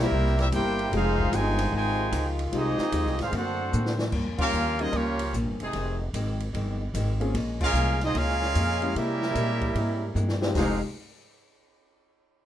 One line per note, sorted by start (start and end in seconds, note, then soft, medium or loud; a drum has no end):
0.00 0.11 B1 loud
0.00 0.10 C#3 medium
0.00 0.11 G3 medium
0.00 0.38 G3 medium
0.00 0.11 A#3 medium
0.00 0.37 A#3 medium
0.00 0.91 A#3 medium
0.00 0.11 C4 medium
0.00 0.40 C4 medium
0.00 0.11 E4 medium
0.00 0.37 E4 medium
0.00 0.12 F4 medium
0.00 0.11 G4 medium
0.00 0.40 G4 medium
0.00 0.40 A#4 medium
0.00 0.40 E5 loud
0.12 0.51 C2 loud
0.12 0.40 C3 medium
0.12 0.92 C3 medium
0.12 0.91 G3 medium
0.12 0.40 G3 medium
0.12 0.41 A#3 medium
0.12 0.91 E4 medium
0.12 0.41 E4 medium
0.26 snare soft
0.39 0.45 G3 medium
0.39 0.45 A#3 medium
0.39 0.47 C4 medium
0.39 0.45 E4 medium
0.39 0.46 G4 medium
0.39 0.46 A#4 medium
0.39 0.47 E5 medium
0.39 snare medium
0.39 ride medium
0.52 0.91 G1 loud
0.52 0.80 C3 medium
0.52 0.80 G3 medium
0.52 0.76 G3 medium
0.52 0.76 A#3 medium
0.52 0.90 A#3 medium
0.52 0.81 A#3 medium
0.52 0.76 C4 medium
0.52 0.90 E4 medium
0.52 0.76 E4 medium
0.52 0.81 E4 medium
0.52 0.91 E4 medium
0.52 0.90 G4 medium
0.52 0.77 G4 medium
0.52 0.91 A#4 medium
0.52 0.91 C5 medium
0.52 0.91 G5 loud
0.52 kick soft
0.52 hi-hat pedal medium
0.52 ride medium
0.79 ride medium
0.91 1.31 F1 loud
0.91 3.31 D#3 medium
0.91 1.20 F3 medium
0.91 2.05 F3 medium
0.91 2.04 G#3 medium
0.91 1.20 G#3 medium
0.91 3.31 G#3 medium
0.91 1.32 G#3 medium
0.91 2.05 C4 medium
0.91 1.33 C4 medium
0.91 2.05 D#4 medium
0.91 1.21 D#4 medium
0.91 3.31 F4 loud
0.91 1.33 F4 medium
0.91 1.21 G4 medium
0.91 2.05 G#4 medium
0.91 kick soft
0.91 ride medium
0.96 1.34 D#4 medium
0.96 1.34 G#4 medium
0.96 1.33 C5 medium
0.96 1.34 F5 loud
1.19 kick medium
1.32 1.71 G1 loud
1.32 1.72 C3 medium
1.32 1.72 D#3 medium
1.32 1.60 F3 medium
1.32 1.60 G#3 medium
1.32 1.72 G#3 medium
1.32 1.60 D#4 medium
1.32 1.74 D#4 medium
1.32 1.61 G4 medium
1.32 1.74 C5 medium
1.32 1.74 G5 medium
1.32 1.74 G#5 loud
1.32 hi-hat pedal medium
1.32 ride medium
1.58 ride medium
1.72 2.11 G#1 medium
1.72 2.26 C3 medium
1.72 2.26 D#3 medium
1.72 2.00 F3 medium
1.72 2.01 G#3 medium
1.72 2.26 G#3 medium
1.72 2.01 D#4 medium
1.72 2.28 D#4 medium
1.72 2.01 G4 medium
1.72 kick soft
1.76 2.28 C5 medium
1.76 2.28 G5 medium
1.76 2.28 G#5 loud
2.12 2.51 C#2 loud
2.12 2.40 F3 medium
2.12 2.40 G#3 medium
2.12 2.40 D#4 medium
2.12 2.40 G4 medium
2.12 kick soft
2.12 hi-hat pedal medium
2.12 ride medium
2.39 ride medium
2.52 2.77 C2 medium
2.52 2.80 F3 medium
2.52 2.76 F3 medium
2.52 2.76 G#3 medium
2.52 2.81 G#3 medium
2.52 3.15 G#3 medium
2.52 2.76 C4 medium
2.52 3.15 C4 medium
2.52 3.17 C4 medium
2.52 2.77 D#4 medium
2.52 3.16 D#4 medium
2.52 2.81 D#4 medium
2.52 2.77 G4 medium
2.52 2.82 G4 medium
2.52 3.17 G4 medium
2.52 3.17 G#4 medium
2.52 3.17 D#5 medium
2.52 kick soft
2.52 ride medium
2.78 muted upright bass stroke soft
2.78 snare medium
2.92 3.05 D#2 loud
2.92 3.20 F3 medium
2.92 3.20 G#3 medium
2.92 3.21 D#4 medium
2.92 3.21 G4 medium
2.92 kick soft
2.92 hi-hat pedal medium
2.92 ride medium
3.05 3.19 C2 medium
3.05 snare soft
3.19 3.32 G#1 medium
3.19 3.34 G#3 medium
3.19 3.33 C4 medium
3.19 3.34 D#4 medium
3.19 3.33 F4 medium
3.19 3.34 G#4 medium
3.19 3.35 C5 medium
3.19 3.34 F5 medium
3.19 snare medium
3.19 ride medium
3.32 3.71 F#2 medium
3.32 3.60 D3 soft
3.32 4.12 D3 medium
3.32 4.12 A3 medium
3.32 3.96 A3 medium
3.32 3.60 A#3 medium
3.32 4.12 C4 medium
3.32 3.61 C4 medium
3.32 3.96 C4 medium
3.32 3.97 D4 medium
3.32 4.12 F#4 medium
3.32 3.96 F#4 medium
3.32 3.61 F#4 medium
3.32 3.97 F#5 medium
3.32 kick soft
3.32 ride medium
3.36 3.97 A4 medium
3.36 3.97 C5 medium
3.72 4.12 A2 loud
3.72 4.00 D3 medium
3.72 4.01 A#3 medium
3.72 4.01 C4 medium
3.72 4.01 F#4 medium
3.72 hi-hat pedal medium
3.86 snare medium
3.99 snare loud
4.12 4.40 G2 medium
4.12 4.26 G2 medium
4.12 4.41 F3 medium
4.12 4.41 A#3 medium
4.12 4.41 C#4 medium
4.12 kick medium
4.12 crash medium
4.26 4.38 F2 medium
4.38 4.52 C#2 medium
4.38 4.52 G3 medium
4.38 4.76 A#3 medium
4.38 4.52 A#3 medium
4.38 4.76 C#4 medium
4.38 4.52 C#4 medium
4.38 4.77 C#4 loud
4.38 4.76 F4 loud
4.38 4.52 F4 medium
4.38 4.52 G4 medium
4.38 4.77 G4 loud
4.38 4.77 A#4 loud
4.38 4.78 F5 loud
4.38 kick loud
4.38 crash medium
4.52 4.92 D#2 medium
4.52 4.80 G2 medium
4.52 4.81 F3 medium
4.52 4.81 A#3 medium
4.52 4.81 C#4 medium
4.52 hi-hat pedal medium
4.79 4.92 G3 medium
4.79 4.92 A#3 medium
4.79 4.94 C4 medium
4.79 4.92 C#4 medium
4.79 4.93 D#4 medium
4.79 4.94 F4 medium
4.79 4.93 F4 medium
4.79 4.94 G#4 medium
4.79 4.93 A#4 medium
4.79 4.94 D#5 loud
4.79 ride medium
4.92 5.32 C#2 medium
4.92 5.20 G2 medium
4.92 5.21 F3 medium
4.92 5.33 F3 medium
4.92 5.34 A#3 medium
4.92 5.21 A#3 medium
4.92 5.34 A#3 medium
4.92 5.34 C#4 medium
4.92 5.22 C#4 medium
4.92 5.34 F4 medium
4.92 5.34 G4 medium
4.92 5.34 C#5 loud
4.92 kick soft
4.92 ride medium
5.19 ride medium
5.33 5.46 A#1 loud
5.33 5.61 G2 medium
5.33 5.62 F3 medium
5.33 5.62 A#3 medium
5.33 5.62 C#4 medium
5.33 kick soft
5.33 hi-hat pedal medium
5.46 5.60 G1 medium
5.60 5.73 F1 medium
5.60 5.98 C3 medium
5.60 5.98 D#3 medium
5.60 5.98 G#3 medium
5.60 5.99 C4 medium
5.60 5.99 D#4 medium
5.60 5.99 G#4 medium
5.60 ride medium
5.73 6.12 F1 medium
5.73 6.01 F2 medium
5.73 6.02 D#3 medium
5.73 6.03 G#3 medium
5.73 6.03 C4 medium
5.73 kick soft
5.73 ride medium
6.13 6.53 G#1 medium
6.13 6.42 F2 medium
6.13 6.42 D#3 medium
6.13 6.42 G#3 medium
6.13 6.43 C4 medium
6.13 kick soft
6.13 hi-hat pedal medium
6.13 ride medium
6.40 ride medium
6.53 6.93 G1 medium
6.53 6.81 F2 medium
6.53 6.82 D#3 medium
6.53 6.82 G#3 medium
6.53 6.83 C4 medium
6.53 kick soft
6.53 ride medium
6.94 7.33 G#1 loud
6.94 7.22 F2 medium
6.94 7.22 D#3 medium
6.94 7.23 G#3 medium
6.94 7.23 C4 medium
6.94 kick soft
6.94 hi-hat pedal medium
6.94 ride medium
7.20 7.33 A#3 medium
7.20 7.33 C4 medium
7.20 7.33 C#4 medium
7.20 7.33 F4 medium
7.20 7.33 G#4 medium
7.20 ride medium
7.34 7.73 A#1 medium
7.34 7.62 A#2 medium
7.34 7.62 F3 medium
7.34 7.63 G#3 medium
7.34 7.63 C#4 medium
7.34 kick soft
7.34 ride medium
7.60 7.99 G#3 medium
7.60 7.99 C#4 medium
7.60 7.99 C#4 loud
7.60 7.98 F4 medium
7.60 7.99 G#4 loud
7.60 7.99 A#4 loud
7.60 7.99 F5 loud
7.60 kick loud
7.60 crash medium
7.73 8.13 C2 loud
7.73 8.02 A#2 medium
7.73 8.02 F3 medium
7.73 8.03 G#3 medium
7.73 8.03 C#4 medium
7.73 hi-hat pedal medium
8.01 8.16 C4 medium
8.01 8.16 D#4 medium
8.01 8.16 F4 medium
8.01 8.16 G#4 medium
8.01 8.16 D#5 loud
8.01 snare soft
8.01 ride medium
8.14 8.54 C#2 medium
8.14 8.42 A#2 medium
8.14 8.43 F3 medium
8.14 8.43 G#3 medium
8.14 8.96 G#3 medium
8.14 8.96 C#4 medium
8.14 8.43 C#4 medium
8.14 8.95 C#4 medium
8.14 8.96 F4 medium
8.14 8.96 G#4 loud
8.14 8.95 A#4 medium
8.14 8.96 F5 loud
8.14 kick soft
8.14 ride medium
8.28 snare soft
8.42 snare soft
8.55 8.94 F2 loud
8.55 8.82 A#2 medium
8.55 8.83 F3 medium
8.55 8.83 G#3 medium
8.55 8.83 C#4 medium
8.55 kick soft
8.55 hi-hat pedal medium
8.55 ride medium
8.82 8.94 G#3 medium
8.82 8.94 A#3 medium
8.82 8.94 C#4 medium
8.82 8.94 E4 medium
8.82 8.94 G4 medium
8.82 ride medium
8.95 9.22 C3 medium
8.95 9.34 C3 medium
8.95 10.11 G3 medium
8.95 9.23 G#3 medium
8.95 10.11 A#3 medium
8.95 9.23 A#3 medium
8.95 10.12 C#4 medium
8.95 10.11 E4 medium
8.95 9.24 E4 medium
8.95 10.12 G4 medium
8.95 10.12 A#4 medium
8.95 10.12 E5 loud
8.95 kick soft
8.95 ride medium
9.22 snare medium
9.34 9.74 A#2 loud
9.34 9.62 C3 medium
9.34 9.63 G#3 medium
9.34 9.63 A#3 medium
9.34 9.63 E4 medium
9.34 kick soft
9.34 hi-hat pedal medium
9.34 ride medium
9.61 kick medium
9.61 ride medium
9.75 10.14 G#2 medium
9.75 10.03 C3 medium
9.75 10.03 G#3 medium
9.75 10.04 A#3 medium
9.75 10.04 E4 medium
9.75 kick soft
9.75 ride medium
10.14 10.54 G2 medium
10.14 10.42 C3 medium
10.14 10.43 G#3 medium
10.14 10.43 A#3 medium
10.14 10.44 E4 medium
10.14 floor tom medium
10.14 hi-hat pedal medium
10.29 snare medium
10.41 10.54 G#3 medium
10.41 10.54 C4 medium
10.41 10.54 D#4 medium
10.41 10.54 F4 medium
10.41 10.54 G4 medium
10.41 snare medium
10.54 10.80 F1 medium
10.54 10.79 F2 loud
10.54 10.79 C3 medium
10.54 10.79 D#3 medium
10.54 10.76 F3 medium
10.54 10.79 G#3 medium
10.54 10.79 C4 medium
10.54 10.77 C4 medium
10.54 10.79 D#4 medium
10.54 10.81 D#4 medium
10.54 10.77 D#4 medium
10.54 10.79 F4 medium
10.54 10.79 G4 medium
10.54 10.80 G#4 medium
10.54 10.77 G#4 medium
10.54 10.81 C5 medium
10.54 10.81 F5 medium
10.54 kick loud
10.54 snare loud
10.54 open hi-hat medium